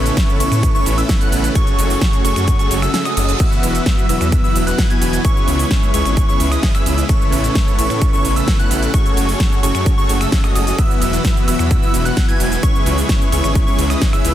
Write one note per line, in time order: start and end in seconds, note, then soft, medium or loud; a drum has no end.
0.00 0.11 A1 loud
0.00 3.36 C#3 medium
0.00 3.36 A3 medium
0.00 1.51 B3 medium
0.00 0.37 C#4 medium
0.00 0.37 E4 medium
0.00 1.54 E4 loud
0.00 0.37 A4 medium
0.00 0.37 B4 medium
0.00 0.37 C#5 loud
0.00 0.37 C#6 loud
0.06 closed hi-hat medium
0.06 shaker soft
0.17 kick loud
0.17 snare loud
0.17 closed hi-hat medium
0.17 ride medium
0.17 shaker soft
0.29 shaker soft
0.40 0.48 A1 loud
0.40 0.72 C#4 loud
0.40 0.72 E4 medium
0.40 0.72 A4 medium
0.40 0.72 B4 medium
0.40 0.72 C#5 loud
0.40 0.72 C#6 loud
0.40 open hi-hat loud
0.40 ride medium
0.40 shaker medium
0.52 0.68 A2 medium
0.52 finger snap medium
0.52 closed hi-hat medium
0.52 shaker soft
0.63 kick loud
0.63 closed hi-hat medium
0.63 ride medium
0.63 shaker soft
0.75 0.95 C#4 loud
0.75 0.95 E4 medium
0.75 0.95 A4 medium
0.75 0.95 B4 medium
0.75 0.95 C#5 loud
0.75 0.95 C#6 loud
0.75 shaker soft
0.86 1.03 A1 loud
0.86 open hi-hat loud
0.86 ride medium
0.86 shaker medium
0.98 1.18 C#4 medium
0.98 1.18 E4 medium
0.98 1.18 A4 medium
0.98 1.18 B4 medium
0.98 1.18 E5 medium
0.98 1.18 E6 medium
0.98 closed hi-hat medium
0.98 shaker soft
1.09 kick loud
1.09 snare loud
1.09 closed hi-hat medium
1.09 ride medium
1.09 shaker soft
1.21 1.53 C#4 medium
1.21 1.53 E4 medium
1.21 1.53 A4 medium
1.21 1.53 B4 medium
1.21 1.53 F#5 medium
1.21 1.53 F#6 medium
1.21 closed hi-hat soft
1.21 shaker soft
1.32 1.49 A1 medium
1.32 open hi-hat loud
1.32 ride medium
1.32 shaker medium
1.44 closed hi-hat medium
1.44 shaker soft
1.55 2.22 C#4 loud
1.55 5.21 F#4 loud
1.55 2.22 F#4 medium
1.55 2.22 G#4 medium
1.55 2.22 A4 medium
1.55 2.22 C#5 loud
1.55 2.22 C#6 loud
1.55 kick loud
1.55 closed hi-hat medium
1.55 ride medium
1.55 shaker soft
1.67 closed hi-hat soft
1.67 shaker soft
1.78 1.95 F#1 loud
1.78 open hi-hat loud
1.78 ride medium
1.78 shaker medium
1.90 open hi-hat medium
1.90 shaker soft
2.02 kick loud
2.02 snare loud
2.02 closed hi-hat medium
2.02 ride medium
2.02 shaker soft
2.13 closed hi-hat soft
2.13 shaker soft
2.25 2.33 F#1 loud
2.25 2.57 C#4 medium
2.25 2.57 F#4 medium
2.25 2.56 G#4 medium
2.25 2.56 A4 medium
2.25 2.57 C#5 loud
2.25 2.56 C#6 loud
2.25 open hi-hat loud
2.25 ride medium
2.25 shaker medium
2.36 2.53 F#2 medium
2.36 finger snap medium
2.36 closed hi-hat medium
2.36 shaker soft
2.48 kick loud
2.48 closed hi-hat medium
2.48 ride medium
2.48 reverse cymbal medium
2.48 shaker soft
2.59 2.80 C#4 loud
2.59 2.80 F#4 medium
2.59 2.80 G#4 medium
2.59 2.80 A4 medium
2.59 2.80 C#5 loud
2.59 2.80 C#6 loud
2.59 closed hi-hat soft
2.59 shaker soft
2.71 2.88 F#1 medium
2.71 open hi-hat loud
2.71 ride medium
2.71 shaker medium
2.82 2.91 C#4 medium
2.82 2.91 F#4 medium
2.82 2.91 G#4 medium
2.82 2.91 A4 medium
2.82 2.91 E5 loud
2.82 2.91 E6 medium
2.82 finger snap medium
2.82 closed hi-hat medium
2.82 shaker soft
2.94 3.03 C#4 medium
2.94 3.03 F#4 medium
2.94 3.03 G#4 medium
2.94 3.03 A4 medium
2.94 3.03 E5 medium
2.94 3.03 E6 medium
2.94 snare loud
2.94 closed hi-hat medium
2.94 ride medium
2.94 shaker soft
3.05 3.14 C#4 medium
3.05 3.14 F#4 medium
3.05 3.14 G#4 medium
3.05 3.14 A4 medium
3.05 3.14 D#5 medium
3.05 3.14 D#6 medium
3.05 finger snap medium
3.05 closed hi-hat soft
3.05 shaker soft
3.17 3.34 F#1 medium
3.17 3.26 C#4 loud
3.17 3.26 F#4 medium
3.17 3.26 G#4 loud
3.17 3.26 A4 medium
3.17 3.26 D#5 loud
3.17 3.26 D#6 loud
3.17 open hi-hat loud
3.17 ride medium
3.17 shaker medium
3.28 3.37 C#4 medium
3.28 3.37 F#4 medium
3.28 3.37 G#4 medium
3.28 3.37 A4 medium
3.28 3.37 D#5 loud
3.28 3.37 D#6 medium
3.28 closed hi-hat medium
3.28 shaker soft
3.40 5.23 E3 medium
3.40 5.23 F#3 medium
3.40 4.07 B3 medium
3.40 7.06 B3 medium
3.40 4.06 E4 medium
3.40 4.06 F#4 medium
3.40 4.07 B4 medium
3.40 4.07 E5 loud
3.40 4.06 E6 loud
3.40 kick loud
3.40 closed hi-hat medium
3.40 crash medium
3.40 ride medium
3.40 shaker soft
3.52 shaker soft
3.63 3.80 E1 loud
3.63 open hi-hat loud
3.63 ride medium
3.63 shaker medium
3.75 closed hi-hat medium
3.75 shaker soft
3.86 kick loud
3.86 snare loud
3.86 closed hi-hat medium
3.86 ride medium
3.86 shaker soft
3.99 shaker soft
4.09 4.18 E1 loud
4.09 4.41 B3 medium
4.09 4.41 E4 medium
4.09 4.41 F#4 medium
4.09 4.41 B4 medium
4.09 4.41 E5 loud
4.09 4.41 E6 loud
4.09 open hi-hat loud
4.09 ride medium
4.09 shaker medium
4.21 4.38 E2 medium
4.21 finger snap medium
4.21 closed hi-hat medium
4.21 shaker soft
4.32 kick loud
4.32 closed hi-hat medium
4.32 ride medium
4.32 shaker soft
4.44 4.64 B3 loud
4.44 4.64 E4 medium
4.44 4.64 F#4 medium
4.44 4.64 B4 medium
4.44 4.64 E5 loud
4.44 4.64 E6 loud
4.44 shaker soft
4.55 4.72 E1 loud
4.55 open hi-hat loud
4.55 ride medium
4.55 shaker medium
4.67 4.87 B3 medium
4.67 4.87 E4 medium
4.67 4.87 F#4 medium
4.67 4.87 B4 medium
4.67 4.87 F#5 medium
4.67 4.87 F#6 medium
4.67 closed hi-hat medium
4.67 shaker soft
4.78 kick loud
4.78 snare loud
4.78 closed hi-hat medium
4.78 shaker soft
4.90 5.22 B3 medium
4.90 5.22 E4 medium
4.90 5.22 F#4 medium
4.90 5.22 B4 medium
4.90 5.22 G#5 medium
4.90 5.22 G#6 medium
4.90 closed hi-hat soft
4.90 shaker soft
5.02 5.18 E1 medium
5.02 open hi-hat loud
5.02 ride medium
5.02 shaker medium
5.13 closed hi-hat medium
5.13 shaker soft
5.25 10.75 C#3 medium
5.25 7.07 G#3 medium
5.25 5.91 C#4 medium
5.25 5.91 E4 medium
5.25 8.90 E4 loud
5.25 5.91 G#4 medium
5.25 5.91 B4 medium
5.25 5.91 C#5 loud
5.25 5.91 C#6 loud
5.25 kick loud
5.25 closed hi-hat medium
5.25 ride medium
5.25 shaker soft
5.37 shaker soft
5.48 5.65 C#2 loud
5.48 open hi-hat loud
5.48 ride medium
5.48 shaker medium
5.59 open hi-hat medium
5.59 shaker soft
5.71 kick loud
5.71 snare loud
5.71 closed hi-hat medium
5.71 ride medium
5.71 shaker soft
5.83 shaker soft
5.94 6.02 C#2 loud
5.94 6.26 C#4 medium
5.94 6.26 E4 medium
5.94 6.26 G#4 medium
5.94 6.26 B4 medium
5.94 6.26 C#5 loud
5.94 6.26 C#6 loud
5.94 open hi-hat loud
5.94 ride medium
5.94 shaker medium
6.05 6.22 G#1 medium
6.05 finger snap medium
6.05 closed hi-hat medium
6.05 shaker soft
6.17 kick loud
6.17 closed hi-hat medium
6.17 ride medium
6.17 shaker soft
6.28 6.49 C#4 loud
6.28 6.49 E4 medium
6.28 6.49 G#4 medium
6.28 6.49 B4 medium
6.28 6.49 C#5 loud
6.28 6.49 C#6 loud
6.28 shaker soft
6.40 6.57 C#2 loud
6.40 open hi-hat loud
6.40 ride medium
6.40 shaker medium
6.52 6.72 C#4 medium
6.52 6.72 E4 medium
6.52 6.72 G#4 medium
6.52 6.72 B4 medium
6.52 6.72 D#5 medium
6.52 6.72 D#6 medium
6.52 finger snap medium
6.52 closed hi-hat medium
6.52 shaker soft
6.63 kick loud
6.63 snare loud
6.63 closed hi-hat medium
6.63 ride medium
6.63 shaker soft
6.75 7.07 C#4 medium
6.75 7.07 E4 medium
6.75 7.07 G#4 medium
6.75 7.07 B4 medium
6.75 7.07 E5 medium
6.75 7.07 E6 medium
6.75 finger snap medium
6.75 closed hi-hat soft
6.75 shaker soft
6.86 7.03 C#2 medium
6.86 open hi-hat loud
6.86 ride medium
6.86 shaker medium
6.98 closed hi-hat medium
6.98 shaker soft
7.09 10.75 A3 medium
7.09 8.92 B3 medium
7.09 7.76 C#4 medium
7.09 7.76 E4 medium
7.09 7.76 A4 medium
7.09 7.76 B4 medium
7.09 7.76 C#5 loud
7.09 7.76 C#6 loud
7.09 kick loud
7.09 closed hi-hat medium
7.09 ride medium
7.09 shaker soft
7.22 shaker soft
7.32 7.49 A1 loud
7.32 open hi-hat loud
7.32 ride medium
7.32 shaker medium
7.44 closed hi-hat medium
7.44 shaker soft
7.55 kick loud
7.55 snare loud
7.55 closed hi-hat medium
7.55 ride medium
7.55 shaker soft
7.68 shaker soft
7.78 7.87 A1 loud
7.78 8.10 C#4 medium
7.78 8.10 E4 medium
7.78 8.10 A4 medium
7.78 8.10 B4 medium
7.78 8.10 C#5 loud
7.78 8.10 C#6 loud
7.78 open hi-hat loud
7.78 ride medium
7.78 shaker medium
7.90 8.07 A2 medium
7.90 finger snap medium
7.90 closed hi-hat medium
7.90 shaker soft
8.02 kick loud
8.02 closed hi-hat medium
8.02 ride medium
8.02 shaker soft
8.13 8.34 C#4 loud
8.13 8.34 E4 medium
8.13 8.34 A4 medium
8.13 8.34 B4 loud
8.13 8.34 C#5 loud
8.13 8.33 C#6 loud
8.13 shaker soft
8.25 8.41 A1 loud
8.25 open hi-hat loud
8.25 ride medium
8.25 shaker medium
8.36 8.57 C#4 medium
8.36 8.57 E4 medium
8.36 8.57 A4 medium
8.36 8.57 B4 medium
8.36 8.57 E5 medium
8.36 8.57 E6 medium
8.36 closed hi-hat medium
8.36 shaker soft
8.48 kick loud
8.48 snare loud
8.48 closed hi-hat medium
8.48 ride medium
8.48 shaker soft
8.59 8.91 C#4 medium
8.59 8.91 E4 medium
8.59 8.91 A4 medium
8.59 8.91 B4 medium
8.59 8.91 F#5 medium
8.59 8.91 F#6 medium
8.59 closed hi-hat soft
8.59 shaker soft
8.71 8.88 A1 medium
8.71 open hi-hat loud
8.71 ride medium
8.71 shaker medium
8.82 closed hi-hat medium
8.82 shaker soft
8.94 9.60 C#4 medium
8.94 9.60 F#4 medium
8.94 10.77 F#4 loud
8.94 9.60 G#4 medium
8.94 9.60 A4 medium
8.94 9.60 C#5 loud
8.94 9.60 C#6 loud
8.94 kick loud
8.94 closed hi-hat medium
8.94 ride medium
8.94 shaker soft
9.06 closed hi-hat soft
9.06 shaker soft
9.17 9.34 F#1 loud
9.17 open hi-hat loud
9.17 ride medium
9.17 shaker medium
9.29 open hi-hat medium
9.29 shaker soft
9.40 kick loud
9.40 snare loud
9.40 closed hi-hat medium
9.40 ride medium
9.40 shaker soft
9.52 shaker soft
9.63 9.72 F#1 loud
9.63 9.95 C#4 medium
9.63 9.95 F#4 medium
9.63 9.95 G#4 medium
9.63 9.95 A4 medium
9.63 9.95 C#5 loud
9.63 9.95 C#6 loud
9.63 open hi-hat loud
9.63 ride medium
9.63 shaker medium
9.75 9.91 F#2 medium
9.75 finger snap medium
9.75 closed hi-hat soft
9.75 shaker soft
9.86 kick loud
9.86 closed hi-hat medium
9.86 ride medium
9.86 shaker soft
9.98 10.18 C#4 loud
9.98 10.18 F#4 medium
9.98 10.18 G#4 medium
9.98 10.18 A4 medium
9.98 10.18 C#5 loud
9.98 10.18 C#6 loud
9.98 shaker soft
10.09 10.26 F#1 loud
10.09 open hi-hat loud
10.09 ride medium
10.09 shaker medium
10.21 10.30 C#4 medium
10.21 10.30 F#4 medium
10.21 10.30 G#4 medium
10.21 10.30 A4 medium
10.21 10.30 E5 medium
10.21 10.30 E6 loud
10.21 finger snap medium
10.21 closed hi-hat soft
10.21 shaker soft
10.32 10.41 C#4 medium
10.32 10.41 F#4 medium
10.32 10.41 G#4 medium
10.32 10.41 A4 medium
10.32 10.41 E5 medium
10.32 10.41 E6 medium
10.32 kick loud
10.32 snare loud
10.32 closed hi-hat medium
10.32 ride medium
10.32 shaker soft
10.44 10.53 C#4 medium
10.44 10.53 F#4 medium
10.44 10.53 G#4 medium
10.44 10.53 A4 medium
10.44 10.53 D#5 medium
10.44 10.53 D#6 medium
10.44 finger snap medium
10.44 closed hi-hat soft
10.44 shaker soft
10.55 10.72 F#1 medium
10.55 10.64 C#4 loud
10.55 10.64 F#4 medium
10.55 10.64 G#4 medium
10.55 10.64 A4 medium
10.55 10.64 D#5 loud
10.55 10.64 D#6 loud
10.55 open hi-hat loud
10.55 ride medium
10.55 shaker medium
10.67 10.76 C#4 medium
10.67 10.76 F#4 medium
10.67 10.76 G#4 medium
10.67 10.76 A4 medium
10.67 10.76 D#5 loud
10.67 10.76 D#6 loud
10.67 closed hi-hat medium
10.67 shaker soft
10.78 12.61 E3 medium
10.78 12.61 F#3 medium
10.78 12.61 B3 medium
10.78 11.45 B3 medium
10.78 11.45 E4 medium
10.78 12.61 F#4 loud
10.78 11.45 F#4 medium
10.78 11.45 B4 medium
10.78 11.45 E5 loud
10.78 11.45 E6 loud
10.78 kick loud
10.78 closed hi-hat medium
10.78 ride medium
10.78 shaker soft
10.91 shaker soft
11.02 11.18 E1 loud
11.02 open hi-hat loud
11.02 ride medium
11.02 shaker medium
11.13 closed hi-hat medium
11.13 shaker soft
11.25 kick loud
11.25 snare loud
11.25 closed hi-hat medium
11.25 ride medium
11.25 shaker soft
11.37 shaker soft
11.48 11.56 E1 loud
11.48 11.80 B3 medium
11.48 11.80 E4 medium
11.48 11.80 F#4 medium
11.48 11.80 B4 medium
11.48 11.80 E5 loud
11.48 11.80 E6 loud
11.48 open hi-hat loud
11.48 ride medium
11.48 shaker medium
11.59 11.76 E2 medium
11.59 finger snap medium
11.59 closed hi-hat medium
11.59 shaker soft
11.71 kick loud
11.71 closed hi-hat medium
11.71 ride medium
11.71 shaker soft
11.82 12.03 B3 loud
11.82 12.03 E4 medium
11.82 12.03 F#4 medium
11.82 12.03 B4 medium
11.82 12.03 E5 loud
11.82 12.03 E6 loud
11.82 shaker soft
11.94 12.11 E1 loud
11.94 open hi-hat loud
11.94 ride medium
11.94 shaker medium
12.05 12.26 B3 medium
12.05 12.26 E4 medium
12.05 12.26 F#4 medium
12.05 12.26 B4 medium
12.05 12.26 F#5 medium
12.05 12.26 F#6 medium
12.05 closed hi-hat medium
12.05 shaker soft
12.17 kick loud
12.17 snare loud
12.17 closed hi-hat medium
12.17 ride medium
12.17 shaker soft
12.28 12.60 B3 medium
12.28 12.60 E4 medium
12.28 12.60 F#4 medium
12.28 12.60 B4 medium
12.28 12.60 G#5 medium
12.28 12.60 G#6 medium
12.28 closed hi-hat soft
12.28 shaker soft
12.40 12.57 E1 medium
12.40 open hi-hat loud
12.40 ride medium
12.40 shaker medium
12.52 closed hi-hat medium
12.52 shaker soft
12.63 14.34 C#3 medium
12.63 14.34 G#3 medium
12.63 14.34 B3 medium
12.63 13.30 C#4 medium
12.63 13.30 E4 medium
12.63 14.34 E4 loud
12.63 13.30 G#4 medium
12.63 13.30 B4 medium
12.63 13.30 C#5 loud
12.63 13.30 C#6 loud
12.63 kick loud
12.63 closed hi-hat medium
12.63 ride medium
12.63 shaker soft
12.75 shaker soft
12.86 13.03 C#2 loud
12.86 open hi-hat loud
12.86 ride medium
12.86 shaker medium
12.98 open hi-hat medium
12.98 shaker soft
13.09 kick loud
13.09 snare loud
13.09 closed hi-hat medium
13.09 ride medium
13.09 shaker medium
13.22 shaker soft
13.32 13.41 C#2 loud
13.32 13.64 C#4 medium
13.32 13.64 E4 medium
13.32 13.64 G#4 medium
13.32 13.64 B4 medium
13.32 13.64 C#5 loud
13.32 13.64 C#6 loud
13.32 open hi-hat loud
13.32 ride medium
13.32 shaker medium
13.44 13.61 G#1 medium
13.44 finger snap medium
13.44 closed hi-hat medium
13.44 shaker soft
13.55 kick loud
13.55 closed hi-hat medium
13.55 ride medium
13.55 shaker soft
13.67 13.87 C#4 loud
13.67 13.87 E4 medium
13.67 13.87 G#4 medium
13.67 13.87 B4 medium
13.67 13.87 C#5 loud
13.67 13.87 C#6 loud
13.67 shaker soft
13.79 13.95 C#2 loud
13.79 open hi-hat loud
13.79 ride medium
13.79 shaker medium
13.90 14.10 C#4 medium
13.90 14.10 E4 medium
13.90 14.10 G#4 medium
13.90 14.10 B4 medium
13.90 14.10 D#5 medium
13.90 14.10 D#6 medium
13.90 finger snap medium
13.90 closed hi-hat medium
13.90 shaker soft
14.01 kick loud
14.01 snare loud
14.01 closed hi-hat medium
14.01 ride medium
14.01 shaker soft
14.13 14.34 C#4 medium
14.13 14.34 E4 medium
14.13 14.34 G#4 medium
14.13 14.34 B4 medium
14.13 14.34 E5 medium
14.13 14.34 E6 medium
14.13 finger snap medium
14.13 closed hi-hat soft
14.13 shaker soft
14.25 14.34 C#2 medium
14.25 open hi-hat loud
14.25 ride medium
14.25 shaker medium